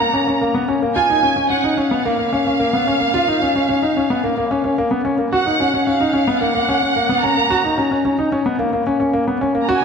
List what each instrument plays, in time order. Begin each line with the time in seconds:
Already playing: violin section A#5
0.14 grand piano C#4
0.27 grand piano C#4
0.41 grand piano A#3
0.54 grand piano B3
0.68 grand piano C#4
0.82 grand piano A#3
0.96 grand piano F4, violin section G#5
1.10 grand piano D#4
1.23 grand piano C#4
1.36 grand piano C#4
1.50 grand piano C#4, violin section F#5
1.64 grand piano D#4
1.77 grand piano C#4, violin section F5
1.91 grand piano B3
2.05 grand piano A#3
2.19 grand piano A#3
2.33 grand piano C#4
2.47 grand piano C#4
2.60 grand piano A#3
2.73 grand piano B3
2.87 grand piano C#4
3.00 grand piano A#3
3.14 grand piano F4
3.28 grand piano D#4
3.42 grand piano C#4
3.55 grand piano C#4
3.69 grand piano C#4
3.82 grand piano D#4
3.97 grand piano C#4
4.10 grand piano B3
4.24 grand piano A#3
4.38 grand piano A#3
4.51 grand piano C#4
4.64 grand piano C#4
4.78 grand piano A#3
4.91 grand piano B3
5.05 grand piano C#4
5.18 grand piano A#3
5.33 grand piano F#4, violin section F#5
5.46 grand piano D#4
5.60 grand piano C#4
5.74 grand piano C#4
5.87 grand piano C#4, violin section F5
6.00 grand piano D#4
6.13 grand piano C#4
6.28 grand piano B3
6.41 grand piano A#3, violin section F#5
6.55 grand piano A#3
6.69 grand piano C#4
6.82 grand piano C#4
6.96 grand piano A#3
7.09 grand piano B3
7.22 grand piano C#4, violin section A#5
7.37 grand piano A#3
7.50 grand piano F#4
7.64 grand piano D#4
7.78 grand piano C#4
7.91 grand piano C#4
8.05 grand piano C#4
8.19 grand piano D#4
8.32 grand piano C#4
8.46 grand piano B3
8.59 grand piano A#3
8.73 grand piano A#3
8.87 grand piano C#4
9.00 grand piano C#4
9.13 grand piano A#3
9.28 grand piano B3
9.41 grand piano C#4
9.55 grand piano A#3
9.62 violin section A#5
9.69 grand piano F#4, violin section G#5